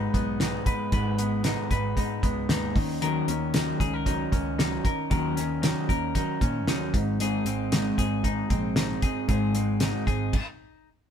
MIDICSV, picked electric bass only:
0, 0, Header, 1, 2, 480
1, 0, Start_track
1, 0, Tempo, 522648
1, 851, Time_signature, 4, 2, 24, 8
1, 10198, End_track
2, 0, Start_track
2, 0, Title_t, "Picked electric bass"
2, 0, Program_c, 0, 34
2, 125, Note_on_c, 0, 35, 73
2, 536, Note_off_c, 0, 35, 0
2, 848, Note_on_c, 0, 32, 96
2, 1420, Note_off_c, 0, 32, 0
2, 1565, Note_on_c, 0, 32, 88
2, 1771, Note_off_c, 0, 32, 0
2, 1806, Note_on_c, 0, 44, 87
2, 2012, Note_off_c, 0, 44, 0
2, 2047, Note_on_c, 0, 37, 80
2, 2253, Note_off_c, 0, 37, 0
2, 2288, Note_on_c, 0, 39, 88
2, 2493, Note_off_c, 0, 39, 0
2, 2529, Note_on_c, 0, 39, 79
2, 2938, Note_off_c, 0, 39, 0
2, 3012, Note_on_c, 0, 39, 79
2, 3420, Note_off_c, 0, 39, 0
2, 3492, Note_on_c, 0, 37, 81
2, 3900, Note_off_c, 0, 37, 0
2, 3972, Note_on_c, 0, 37, 82
2, 4380, Note_off_c, 0, 37, 0
2, 4692, Note_on_c, 0, 39, 89
2, 5262, Note_off_c, 0, 39, 0
2, 5410, Note_on_c, 0, 39, 95
2, 5615, Note_off_c, 0, 39, 0
2, 5647, Note_on_c, 0, 51, 100
2, 5853, Note_off_c, 0, 51, 0
2, 5888, Note_on_c, 0, 46, 76
2, 6127, Note_off_c, 0, 46, 0
2, 6127, Note_on_c, 0, 39, 84
2, 6333, Note_off_c, 0, 39, 0
2, 6370, Note_on_c, 0, 32, 78
2, 6779, Note_off_c, 0, 32, 0
2, 6845, Note_on_c, 0, 32, 86
2, 7256, Note_off_c, 0, 32, 0
2, 7326, Note_on_c, 0, 32, 83
2, 7736, Note_off_c, 0, 32, 0
2, 7808, Note_on_c, 0, 34, 90
2, 8217, Note_off_c, 0, 34, 0
2, 8530, Note_on_c, 0, 32, 100
2, 9100, Note_off_c, 0, 32, 0
2, 9248, Note_on_c, 0, 32, 99
2, 9453, Note_off_c, 0, 32, 0
2, 10198, End_track
0, 0, End_of_file